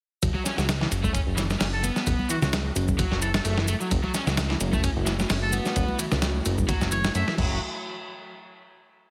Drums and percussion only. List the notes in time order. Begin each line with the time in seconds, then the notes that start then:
0.22 kick, ride, shaker
0.34 high conga
0.46 snare, ride, shaker
0.58 snare, shaker
0.68 snare, ride, high conga, shaker
0.81 snare
0.92 ride, shaker
1.04 kick, high conga, shaker
1.15 kick, ride, shaker
1.38 snare, ride, shaker
1.50 snare, high conga, shaker
1.61 snare, open hi-hat, shaker
1.84 ride, high conga, shaker
1.96 snare, shaker
2.06 kick, ride, shaker
2.19 high conga
2.30 ride, shaker
2.42 snare, low conga, shaker
2.53 snare, ride, high conga, shaker
2.76 ride, shaker
2.88 kick, high conga, shaker
2.99 kick, ride, low conga, shaker
3.12 snare
3.22 ride, shaker
3.34 snare, high conga, shaker
3.45 ride, shaker
3.58 snare
3.68 ride, high conga, shaker
3.81 shaker
3.91 kick, ride, shaker
4.04 high conga
4.14 snare, ride, shaker
4.27 snare, shaker
4.37 snare, ride, high conga, shaker
4.50 snare
4.60 ride, shaker
4.73 kick, high conga, shaker
4.83 kick, ride, shaker
5.07 snare, ride, shaker
5.19 snare, high conga, shaker
5.30 snare, open hi-hat, shaker
5.53 ride, high conga, shaker
5.65 snare, shaker
5.76 kick, ride, shaker
5.88 high conga
5.99 ride, shaker
6.12 snare, low conga, shaker
6.22 snare, ride, high conga, shaker
6.45 ride, shaker
6.58 kick, high conga, shaker
6.69 kick, ride, low conga, shaker
6.81 snare, shaker
6.92 ride, shaker
7.04 snare, high conga, shaker
7.15 ride, shaker
7.28 snare
7.38 kick, crash, high conga